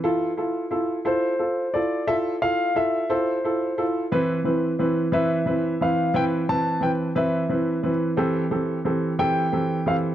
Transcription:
X:1
M:6/8
L:1/8
Q:3/8=59
K:Flyd
V:1 name="Grand piano"
z3 c2 d | e f e c2 z | z3 e2 f | g a g e2 z |
z3 g2 f |]
V:2 name="Upright piano"
[EFA] [EFA] [EFA] [EFA] [FA] [EFA] | [EFA] [EFA] [EFA] [EFA] [EFA] [EFA] | [E,CEB] [E,CEB] [E,CEB] [E,CEB] [E,CEB] [E,CEB] | [E,CEB] [E,CEB] [E,CEB] [E,CEB] [E,CEB] [E,CEB] |
[E,CGA] [E,CGA] [E,CGA] [E,CGA] [E,CGA] [E,CGA] |]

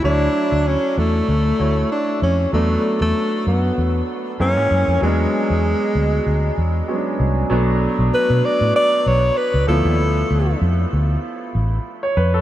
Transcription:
X:1
M:4/4
L:1/16
Q:"Swing 16ths" 1/4=96
K:Dlyd
V:1 name="Alto saxophone"
D4 C2 A,6 D2 C2 | A,3 A,3 B,4 z2 C4 | G,12 z4 | z4 B2 d2 d2 c2 B2 A2- |
A4 z12 |]
V:2 name="Grand piano"
z16 | z16 | z16 | z16 |
z12 z c B A |]
V:3 name="Grand piano"
[F,A,Ec]8- [F,A,Ec]2 [A,EFc]6 | [F,A,B,D]12 [E,G,^A,C]4 | [F,G,B,D]12 [F,G,B,CD]4 | [F,A,B,D]12- [F,A,B,D]2 [=F,A,B,E]2- |
[=F,A,B,E]12- [F,A,B,E]2 z2 |]
V:4 name="Fingered electric bass" clef=bass
D,,2 z D,,2 z E,,2 D,,2 D,,2 z2 =F,,2 | E,,2 z E,, z2 F,,2 E,,2 z2 F,, G,, F,, =F,, | E,,2 z E,,2 z D,,2 D,,2 E,,2 z2 =C,,2 | B,,,3 B,,, z B,, z A,, z2 B,,,2 z C,, D,, ^D,, |
D,,2 D,,2 =F,,2 D,,2 z2 A,,,2 z2 F,,2 |]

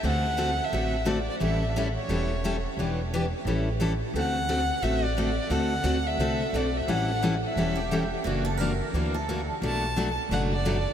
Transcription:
X:1
M:4/4
L:1/16
Q:"Swing" 1/4=175
K:D
V:1 name="Violin"
f6 e6 d2 d2 | e4 z2 c8 z2 | z16 | f8 e2 d6 |
f6 e6 d2 e2 | f4 z2 e8 z2 | z16 | a6 z2 f2 d4 z2 |]
V:2 name="Steel-string acoustic guitar"
z16 | z16 | z16 | z16 |
z16 | z8 z2 G6 | F2 A2 ^A6 =A4- A z | z16 |]
V:3 name="Steel-string acoustic guitar"
[D,A,=CFA]2 z2 [D,A,CFA] z3 [D,A,CFA]2 z2 [D,A,CFA] z3 | [E,G,CEA]2 z2 [E,G,CEA] z3 [E,G,CEA]2 z2 [E,G,CEA] z3 | [E,B,DG]2 z2 [E,B,DG] z3 [E,G,CEA]2 z2 [E,G,CEA] z3 | [D,A,=CFA]2 z2 [D,A,CFA] z3 [D,A,CFA]2 z2 [D,A,CFA] z3 |
[D,A,=CFA]2 z2 [D,A,CFA] z3 [D,A,CFA]2 z2 [D,A,CFA] z3 | [E,G,CEA]2 z2 [E,G,CEA] z3 [E,G,CEA]2 z2 [E,G,CEA] z3 | [E,^A,DF]2 z2 [E,A,DF] z3 [E,A,DF]2 z2 [E,A,DF] z3 | [B,,F,A,DF]2 z2 [B,,F,A,DF] z3 [B,,F,A,DF]2 z2 [B,,F,A,DF] z3 |]
V:4 name="Upright bass" clef=bass
D,,8 A,,,8 | A,,,8 E,,,8 | E,,,8 A,,,8 | D,,8 A,,,8 |
D,,4 D,,4 =C,,4 B,,,4 | A,,,8 E,,,8 | F,,,8 D,,8 | B,,,8 F,,,8 |]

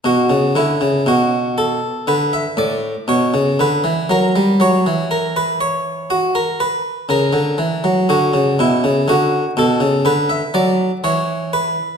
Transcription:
X:1
M:4/4
L:1/16
Q:1/4=60
K:Bm
V:1 name="Harpsichord"
F2 E2 F2 A2 B e d2 c2 B2 | ^A2 c2 A B c2 F A B2 A4 | F2 E2 F2 A2 B e d2 c2 B2 |]
V:2 name="Harpsichord" clef=bass
B,, C, D, C, B,,4 D,2 A,,2 B,, C, D, E, | F, G, F, E,8- E, C, D, E, F, | D, C, B,, C, D,2 B,, C, D,2 F,2 E,4 |]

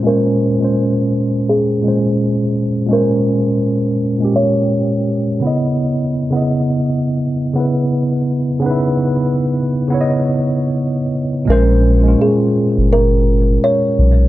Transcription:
X:1
M:4/4
L:1/16
Q:"Swing 16ths" 1/4=84
K:Dblyd
V:1 name="Kalimba"
B8 A8 | B8 d6 z2 | z16 | z16 |
B4 A4 B4 d4 |]
V:2 name="Tine electric piano"
[B,,A,Dc]2 z [B,,A,Dc]4- [B,,A,Dc] z2 [B,,A,Dc]4- [B,,A,Dc] z | [B,,A,Dc]4- [B,,A,Dc] z2 [B,,A,DG]6 z [D,_C_Fe]2- | [D,_C_Fe]2 z [D,CFe]4- [D,CFe] z2 [D,CF_c]4- [D,CFc] z | [D,_CE_F_c]4- [D,CEFc] z2 [D,CFde]6 z3 |
[B,,A,Dc]2 z [B,,A,DF]6 z6 z |]
V:3 name="Sub bass" clef=bass
z16 | z16 | z16 | z16 |
B,,,4 z3 G,,,4- G,,, z2 _C,,2 |]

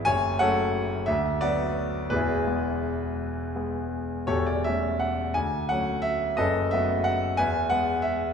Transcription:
X:1
M:6/8
L:1/16
Q:3/8=58
K:Emix
V:1 name="Grand piano"
[cg]2 [Acf]4 e2 [FBd]4 | [EGB]8- [EGB]2 z2 | [=GAc] d e2 f2 ^g2 f2 e2 | [AB^d]2 e2 f2 [Beg]2 f2 e2 |]
V:2 name="Grand piano" clef=bass
F,,,2 [F,A,C]4 D,,2 [F,B,]4 | [E,,,E,,]2 [G,B,]6 [G,B,]4 | [E,,,E,,]2 [=G,A,C]4 D,,2 [F,A,C]4 | [F,,,F,,]2 [F,A,B,]4 E,,2 [G,B,]4 |]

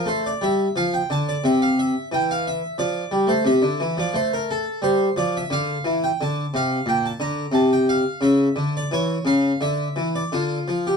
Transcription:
X:1
M:4/4
L:1/16
Q:1/4=87
K:F
V:1 name="Harpsichord"
c d e2 f g a d e f e2 g f e2 | d3 c e3 d c B A2 c2 d e | [K:Dm] f3 g a2 f2 g a b2 a g f2 | e3 d ^c2 f2 e3 d F3 G |]
V:2 name="Harpsichord" clef=bass
A,2 G,2 F,2 D,2 C,4 E,4 | F,2 G, A, C, D, E, F, A,4 G,2 F,2 | [K:Dm] D,2 E,2 D,2 C,2 B,,2 D,2 C,4 | ^C,2 D,2 E,2 C,2 D,2 E,2 D,2 F,2 |]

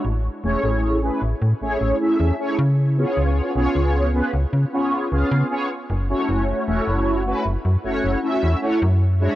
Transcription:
X:1
M:4/4
L:1/16
Q:1/4=77
K:F#m
V:1 name="Analog polysynth"
z2 [A,CEGc]3 [A,CEGB] z2 [A,CEGc]2 [A,CEGe]2 [A,CEGc] z2 [B,C^EGc]- | [B,C^EGc]2 [B,CEGc]3 [B,CEGB] z2 [B,CEGc]2 [B,CEG^e]2 [B,CEGc] z2 [A,C=EFc]- | [A,CEFc]2 [A,CEFc]3 [A,CEFB] z2 [A,CEFc]2 [A,CEFe]2 [A,CEFc] z2 [G,DEFc] |]
V:2 name="FM bass" clef=bass
A,,, z E,,, A,,,2 z A,,, A,, A,,, A,,, z E,, z C,2 z | C,, z B,,, C,,2 z C,, C, z2 C,, C, z2 F,,, z | F,,, z E,,, F,,,2 z F,,, F,, F,,, F,,, z E,, z F,,2 z |]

